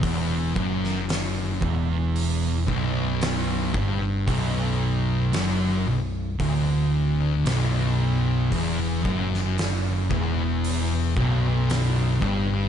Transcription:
<<
  \new Staff \with { instrumentName = "Distorted electric guitar" } { \clef bass \time 4/4 \key b \minor \tempo 4 = 57 e,8 fis,4 e,4 b,,4 g,8 | b,,4 fis,8 b,,8 d,4 b,,4 | e,8 fis,4 e,4 b,,4 g,8 | }
  \new Staff \with { instrumentName = "Distorted electric guitar" } { \clef bass \time 4/4 \key b \minor e,8 fis,4 e,4 b,,4 g,8 | b,,4 fis,8 b,,8 d,4 b,,4 | e,8 fis,4 e,4 b,,4 g,8 | }
  \new Staff \with { instrumentName = "Picked electric bass" } { \clef bass \time 4/4 \key b \minor e,,8 fis,,4 e,,4 b,,,4 g,,8 | b,,,4 fis,,8 b,,,8 d,,4 b,,,4 | e,,8 fis,,4 e,,4 b,,,4 g,,8 | }
  \new DrumStaff \with { instrumentName = "Drums" } \drummode { \time 4/4 <hho bd>8 bd16 sn16 <hho sn>8 bd8 hho8 bd8 <hho sn>8 bd8 | <hho bd>4 <hho sn>4 <hho bd>4 <hho sn>4 | <hho bd>8 bd16 sn16 <hho sn>8 bd8 hho8 bd8 <hho sn>8 bd8 | }
>>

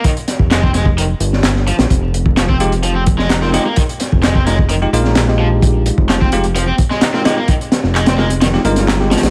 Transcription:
<<
  \new Staff \with { instrumentName = "Tine electric piano" } { \time 4/4 \key f \minor \tempo 4 = 129 r1 | r4. <aes ees' f' g'>16 r4. <aes ees' f' bes'>16 <aes ees' f' g'>16 r16 | r4. <aes ees' f' bes'>16 r8 <aes ees' f' g'>16 <aes ees' f' bes'>8. <aes ees' f' g'>8.~ | <aes ees' f' g'>4. <aes ees' f' g'>16 r4. <aes ees' f' bes'>16 <aes ees' f' g'>16 r16 |
r4. <aes ees' f' bes'>16 r8 <aes ees' f' g'>16 <aes ees' f' bes'>8. <aes ees' f' g'>8. | }
  \new Staff \with { instrumentName = "Overdriven electric guitar" } { \clef bass \time 4/4 \key f \minor ees16 r8. aes16 c'16 aes16 r16 ees16 r4 r16 f16 r16 | r4 f16 c'16 r8 f16 c'16 r16 aes16 ees'16 c'16 aes16 bes16 | ees16 r8. aes16 c'16 aes16 r16 ees16 r4 r16 f16 r16 | r4 f16 c'16 r8 f16 c'16 r16 aes16 ees'16 c'16 aes16 bes16 |
ees16 r8. aes16 c'16 aes16 r16 ees16 r4 r16 f16 r16 | }
  \new Staff \with { instrumentName = "Analog synth bass" } { \clef bass \time 4/4 \key f \minor r8. f,,4. r16 g,,4 r16 bes,,16 | f,,2.~ f,,8 r8 | r8. f,,4. r16 bes,,4.~ | bes,,8 r16 f,,4. r4. r16 |
r8. f,,4. r16 g,,4 r16 bes,,16 | }
  \new DrumStaff \with { instrumentName = "Drums" } \drummode { \time 4/4 <hh bd>16 hh16 <hh sn>16 bd16 <hc hh sn>16 bd16 <hh sn>16 bd16 hh8 hh16 sn16 <hc hh sn>16 sn16 hh16 <hh sn>16 | <hh bd>8 hh16 bd16 <hc hh sn>16 bd16 hh16 hh16 hh8 <hh bd>16 sn16 <hc hh sn>16 sn16 <hh sn>8 | <hh bd>16 hh16 <hh sn>16 bd16 <hc hh sn>16 bd16 <hh sn>16 bd16 hh8 hh16 sn16 <hc hh sn>16 sn8. | <hh bd>8 hh16 bd16 <hc hh sn>16 bd16 hh16 hh16 hh8 <hh bd>16 sn16 <hc hh sn>16 sn16 <hh sn>8 |
<hh bd>16 hh16 <hh sn>16 sn16 <hc hh>16 <hh sn>16 sn16 hh16 <hh sn>16 sn16 hh16 <hh sn>16 <hc hh sn>16 sn16 <hh sn>32 <hh sn>32 <hh sn>16 | }
>>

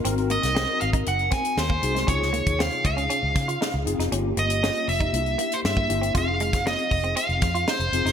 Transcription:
<<
  \new Staff \with { instrumentName = "Lead electric guitar" } { \time 4/4 \key aes \mixolydian \tempo 4 = 118 r8 ees''4 f''8 ges''8 aes''8 c''4 | des''4 f''8 f''2 r8 | r8 ees''4 e''4~ e''16 c''16 e''4 | f''4 ees''4 f''4 c''4 | }
  \new Staff \with { instrumentName = "Tine electric piano" } { \time 4/4 \key aes \mixolydian <c' ees' ges' bes'>4. r2 <c' ees' ges' aes'>8 | <c ees' f' aes'>4. r2 <c' ees' f' aes'>8 | <bes des' f' g'>4. r8 <bes d' e' f' g'>4 r8 <bes d' e' g'>8 | <c' ees' f' aes'>4. r2 <c' ees' f' aes'>8 | }
  \new Staff \with { instrumentName = "Clean electric guitar" } { \time 4/4 \key aes \mixolydian c'16 r16 bes16 r16 c'16 r8 ees'16 r8 c'16 r8 bes16 r16 aes16 | des'16 r16 bes16 r16 c'16 r8 des'16 des'16 r8 f'16 ees'16 r8 ees'16 | des'16 r16 bes16 r16 des'16 r8 ees'16 r8 bes16 r8 bes16 r16 c'16 | f'16 r16 aes16 r16 bes16 r8 c'16 c'16 r8 f'16 ees'16 r8 ees'16 | }
  \new Staff \with { instrumentName = "Fingered electric bass" } { \clef bass \time 4/4 \key aes \mixolydian aes,,8. c,8 r16 aes,,8 ges,,8 r8 ees,8 c,8 | des,8. ees,8 r16 des,8 r16 des,16 des8 r16 des,16 ges,,16 f,,16 | g,,8 g,,8. r16 f,,8 c,8 r8 g,8 g,,8 | f,,8. ges,,8 r16 f,,8 r16 f,,16 f,8 r16 f,,16 f,,16 ges,,16 | }
  \new DrumStaff \with { instrumentName = "Drums" } \drummode { \time 4/4 hh16 hh16 hh16 <hh sn>16 sn8 hh16 <hh bd>16 hh16 hh16 <hh bd sn>16 hh16 sn16 bd16 hh16 <hh sn>16 | <hh bd>16 sn16 hh16 <hh bd>16 sn16 hh16 <hh bd>16 hh16 hh8 <hh bd sn>16 hh16 sn8 hh16 <hh sn>16 | hh8 hh16 hh16 sn16 hh16 hho16 <hh bd>16 hh16 hh16 hh16 hh16 sn16 bd16 hh16 hh16 | <hh bd>8 hh16 <hh bd sn>16 sn16 hh16 <hho bd>16 hh16 hh16 hh16 <hh bd sn>16 hh16 sn16 hh16 hh16 <hh sn>16 | }
>>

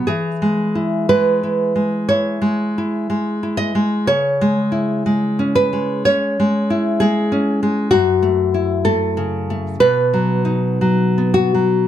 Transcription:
\new Staff \with { instrumentName = "Nylon-string guitar" } { \time 4/4 \key e \major \tempo 4 = 61 << { gis'4 b'4 cis''4. dis''8 | cis''4. b'8 cis''4 gis'4 | fis'4 a'4 b'4. fis'8 | } \\ { \tuplet 3/2 { e8 gis8 e'8 gis8 e'8 gis8 e'8 gis8 e'8 gis8 e'8 gis8 } | \tuplet 3/2 { cis8 gis8 e'8 gis8 cis'8 gis8 cis'8 gis8 e'8 gis8 cis'8 gis8 } | \tuplet 3/2 { fis,8 a8 e'8 a8 cis8 a8 b,8 fis8 dis'8 fis8 b8 fis8 } | } >> }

